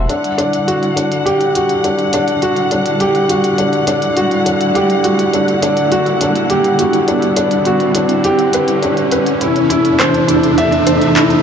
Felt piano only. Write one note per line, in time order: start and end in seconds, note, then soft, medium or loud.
0.00 0.11 E4 medium
0.00 0.11 C5 medium
0.00 0.12 E5 medium
0.00 0.12 A5 medium
0.00 0.11 C6 medium
0.10 0.26 D4 medium
0.38 0.55 D4 medium
0.68 0.95 F#4 medium
0.96 1.24 D4 medium
1.25 1.53 G4 medium
1.56 1.72 F#4 medium
1.85 2.01 D4 medium
2.14 2.30 D4 medium
2.42 2.70 F#4 medium
2.72 2.99 D4 medium
3.00 3.28 G4 medium
3.30 3.46 F#4 medium
3.58 3.75 D4 medium
3.88 4.04 D4 medium
4.17 4.45 F#4 medium
4.46 4.74 D4 medium
4.75 5.03 G4 medium
5.04 5.21 F#4 medium
5.34 5.50 D4 medium
5.63 5.80 D4 medium
5.92 6.20 F#4 medium
6.21 6.49 D4 medium
6.50 6.78 G4 medium
6.80 6.96 F#4 medium
7.08 7.25 D4 medium
7.37 7.54 D4 medium
7.66 7.94 F#4 medium
7.96 8.23 D4 medium
8.24 8.52 G4 loud
8.54 8.82 B4 medium
8.83 9.11 D4 medium
9.12 9.29 B4 medium
9.42 9.58 E4 medium
9.70 9.87 E4 medium
9.99 10.27 C5 medium
10.28 10.56 E4 medium
10.58 10.86 E5 loud
10.87 11.04 C5 medium
11.16 11.33 E4 medium